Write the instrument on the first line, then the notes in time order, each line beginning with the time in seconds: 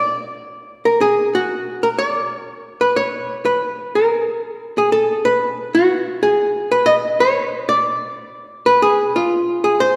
hollow-body jazz guitar
Already playing: D5
0.85 A#4
1.01 G#4
1.35 F#4
1.83 A#4
1.99 D5
2.81 B4
2.96 C#5
3.45 B4
3.95 A#4
4.78 G#4
4.92 A4
5.25 B4
5.75 F#4
6.23 G#4
6.72 B4
6.86 D#5
7.20 C#5
7.69 D5
8.66 B4
8.82 G#4
9.16 F4
9.64 G#4
9.80 C5